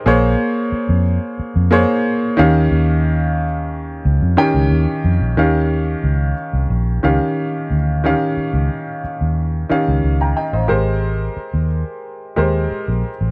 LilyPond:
<<
  \new Staff \with { instrumentName = "Grand piano" } { \time 4/4 \key ees \mixolydian \tempo 4 = 90 << { r1 | r1 | r1 | r2. r16 <g'' bes''>16 <ees'' g''>16 <c'' ees''>16~ |
<c'' ees''>16 r2. r8. | } \\ { <bes aes' c'' des''>4. r4 <bes aes' c'' des''>4 <ees des' g' f''>8~ | <ees des' g' f''>4 r4. <ees des' g' g''>4 r8 | <ees des' g' f''>4. r4 <ees des' g' f''>4 r8 | <ees des' g' f''>4. r4 <ees des' g' f''>4 r8 |
<aes g' bes' c''>4. r4 <aes g' bes' c''>4 r8 | } >> }
  \new Staff \with { instrumentName = "Fingered electric bass" } { \clef bass \time 4/4 \key ees \mixolydian bes,,8 r8. f,8 r8 f,8 r8. ees,8 | ees,2 des,16 f,16 r16 des,16 ees,16 r16 f,16 bes,,16 | ees,4 des,8 r16 c,16 bes,,8 des,16 r8. d,8~ | d,16 r8 des,16 r8. ees,8. r16 des,16 des,8 r16 a,,16 |
aes,,4 r16 ees,8 r8. ees,8 r16 bes,,16 r16 a,,16 | }
>>